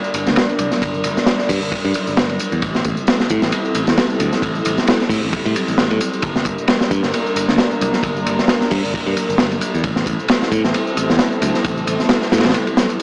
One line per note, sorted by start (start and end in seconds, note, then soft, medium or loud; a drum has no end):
0.00 9.80 G3 medium
0.00 2.59 D4 medium
0.00 2.59 A#4 medium
0.00 2.59 D5 medium
0.04 tambourine soft
0.14 0.24 G1 medium
0.14 ride medium
0.14 tambourine medium
0.26 0.35 D2 medium
0.26 snare medium
0.26 tambourine soft
0.26 low conga loud
0.36 snare loud
0.36 ride medium
0.36 tambourine soft
0.49 tambourine soft
0.59 0.69 C2 loud
0.59 ride medium
0.59 tambourine medium
0.59 high conga medium
0.71 snare soft
0.71 tambourine soft
0.82 1.00 G1 loud
0.82 kick loud
0.82 ride medium
0.82 tambourine soft
0.94 tambourine soft
0.94 high conga medium
1.04 1.14 G1 medium
1.04 ride medium
1.04 tambourine medium
1.04 low conga medium
1.17 snare soft
1.17 tambourine soft
1.17 low conga medium
1.26 snare loud
1.26 ride medium
1.26 tambourine soft
1.39 snare soft
1.39 tambourine soft
1.49 1.59 G2 loud
1.49 kick medium
1.49 open hi-hat medium
1.49 tambourine medium
1.62 1.70 G1 medium
1.62 tambourine soft
1.71 kick loud
1.71 ride medium
1.71 tambourine soft
1.71 low conga medium
1.85 1.93 G2 medium
1.85 ride soft
1.85 tambourine soft
1.94 ride medium
1.94 tambourine medium
1.94 high conga medium
2.07 2.37 G1 medium
2.07 tambourine soft
2.17 snare loud
2.17 ride medium
2.17 tambourine soft
2.29 ride soft
2.29 tambourine soft
2.29 high conga medium
2.39 ride medium
2.39 tambourine medium
2.52 2.60 E2 medium
2.52 tambourine soft
2.62 2.81 A1 medium
2.62 6.19 C4 medium
2.62 6.19 E4 medium
2.62 6.20 A4 medium
2.62 kick loud
2.62 ride medium
2.62 tambourine soft
2.75 snare soft
2.75 tambourine soft
2.85 2.95 A1 medium
2.85 kick medium
2.85 ride medium
2.85 tambourine medium
2.85 low conga loud
2.97 tambourine soft
2.97 low conga medium
3.07 snare loud
3.07 ride medium
3.07 tambourine soft
3.20 snare medium
3.20 tambourine soft
3.30 3.40 A2 loud
3.30 kick medium
3.30 ride medium
3.30 tambourine medium
3.42 3.50 A1 medium
3.42 snare medium
3.42 tambourine soft
3.52 ride medium
3.52 tambourine soft
3.65 tambourine soft
3.75 3.85 A1 medium
3.75 ride medium
3.75 tambourine medium
3.87 3.96 E2 medium
3.87 snare medium
3.87 tambourine soft
3.87 low conga loud
3.97 snare loud
3.97 ride medium
3.97 tambourine soft
4.10 tambourine soft
4.19 4.30 D2 loud
4.19 ride medium
4.19 tambourine medium
4.19 high conga medium
4.33 snare soft
4.33 tambourine soft
4.42 4.61 A1 loud
4.42 kick loud
4.42 ride medium
4.42 tambourine soft
4.55 tambourine soft
4.55 high conga medium
4.65 4.75 A1 medium
4.65 ride medium
4.65 tambourine medium
4.65 low conga medium
4.78 snare soft
4.78 tambourine soft
4.78 low conga medium
4.87 snare loud
4.87 ride medium
4.87 tambourine soft
5.00 snare soft
5.00 tambourine soft
5.09 5.20 A2 loud
5.09 kick medium
5.09 open hi-hat medium
5.09 tambourine medium
5.23 5.31 A1 medium
5.23 tambourine soft
5.33 kick loud
5.33 ride medium
5.33 tambourine soft
5.33 low conga medium
5.45 5.53 A2 medium
5.45 ride soft
5.45 tambourine soft
5.55 ride medium
5.55 tambourine medium
5.55 high conga medium
5.68 5.90 A1 medium
5.68 tambourine soft
5.78 snare loud
5.78 ride medium
5.78 tambourine soft
5.91 5.99 A2 medium
5.91 ride soft
5.91 tambourine soft
5.91 high conga medium
6.01 ride medium
6.01 tambourine medium
6.14 tambourine soft
6.22 6.42 G1 medium
6.22 9.80 A#3 medium
6.22 9.80 D4 medium
6.22 9.80 A#4 medium
6.22 kick loud
6.22 ride medium
6.22 tambourine soft
6.36 snare medium
6.36 tambourine soft
6.45 6.56 G1 medium
6.45 kick medium
6.45 ride medium
6.45 tambourine medium
6.45 low conga medium
6.58 tambourine soft
6.58 low conga medium
6.68 snare loud
6.68 ride medium
6.68 tambourine soft
6.81 snare medium
6.81 tambourine soft
6.91 7.01 G2 loud
6.91 kick medium
6.91 ride medium
6.91 tambourine medium
7.03 7.11 G1 medium
7.03 snare soft
7.03 tambourine soft
7.14 ride medium
7.14 tambourine soft
7.26 tambourine soft
7.36 7.46 G1 medium
7.36 ride medium
7.36 tambourine medium
7.48 7.56 D2 medium
7.48 snare soft
7.48 tambourine soft
7.48 low conga medium
7.58 snare loud
7.58 ride medium
7.58 tambourine soft
7.72 tambourine soft
7.81 7.91 C2 loud
7.81 ride medium
7.81 tambourine medium
7.81 high conga medium
7.93 snare soft
7.93 tambourine soft
8.03 8.22 G1 loud
8.03 kick loud
8.03 ride medium
8.03 tambourine soft
8.16 tambourine soft
8.16 high conga medium
8.26 8.36 G1 medium
8.26 ride medium
8.26 tambourine medium
8.26 low conga medium
8.39 snare soft
8.39 tambourine soft
8.39 low conga medium
8.48 snare loud
8.48 ride medium
8.48 tambourine soft
8.61 snare soft
8.61 tambourine soft
8.71 8.81 G2 loud
8.71 kick medium
8.71 open hi-hat medium
8.71 tambourine medium
8.84 8.92 G1 medium
8.84 tambourine soft
8.94 kick loud
8.94 ride medium
8.94 tambourine soft
8.94 low conga medium
9.06 9.14 G2 medium
9.06 ride soft
9.06 tambourine soft
9.17 ride medium
9.17 tambourine medium
9.17 high conga medium
9.29 9.58 G1 medium
9.29 tambourine soft
9.38 snare loud
9.38 ride medium
9.38 tambourine soft
9.51 ride soft
9.51 tambourine soft
9.51 high conga medium
9.61 ride medium
9.61 tambourine medium
9.74 9.82 E2 medium
9.74 tambourine soft
9.84 10.02 A1 loud
9.84 13.03 G3 medium
9.84 13.03 C4 medium
9.84 13.03 E4 medium
9.84 13.03 A4 medium
9.84 kick loud
9.84 ride medium
9.84 tambourine soft
9.96 snare soft
9.96 tambourine soft
10.06 10.16 A1 medium
10.06 kick loud
10.06 ride medium
10.06 tambourine medium
10.06 low conga medium
10.19 tambourine soft
10.19 low conga medium
10.28 snare loud
10.28 ride medium
10.28 tambourine soft
10.42 snare medium
10.42 tambourine soft
10.52 10.62 A2 loud
10.52 kick loud
10.52 ride medium
10.52 tambourine medium
10.64 10.72 A1 medium
10.64 snare medium
10.64 tambourine soft
10.74 ride medium
10.74 tambourine soft
10.87 tambourine soft
10.97 11.07 A1 medium
10.97 ride medium
10.97 tambourine medium
11.09 11.17 E2 medium
11.09 snare soft
11.09 tambourine soft
11.09 low conga loud
11.19 snare loud
11.19 ride medium
11.19 tambourine soft
11.32 tambourine soft
11.41 11.52 D2 loud
11.41 ride medium
11.41 tambourine medium
11.41 high conga medium
11.54 snare soft
11.54 tambourine soft
11.64 11.83 A1 medium
11.64 kick loud
11.64 ride medium
11.64 tambourine soft
11.77 tambourine soft
11.77 high conga medium
11.87 11.97 A1 medium
11.87 ride medium
11.87 tambourine medium
11.87 low conga medium
11.99 snare soft
11.99 tambourine soft
11.99 low conga medium
12.09 snare loud
12.09 ride medium
12.09 tambourine soft
12.22 snare soft
12.22 tambourine soft
12.32 12.42 A2 loud
12.32 snare medium
12.32 ride medium
12.32 tambourine medium
12.38 snare medium
12.38 ride medium
12.44 12.53 A1 medium
12.44 snare medium
12.44 ride medium
12.44 tambourine soft
12.50 snare medium
12.50 ride medium
12.54 ride medium
12.54 tambourine soft
12.54 low conga medium
12.67 ride soft
12.67 tambourine soft
12.67 high conga medium
12.77 snare loud
12.77 ride medium
12.77 tambourine medium
12.77 high conga medium
12.90 ride soft
12.90 tambourine soft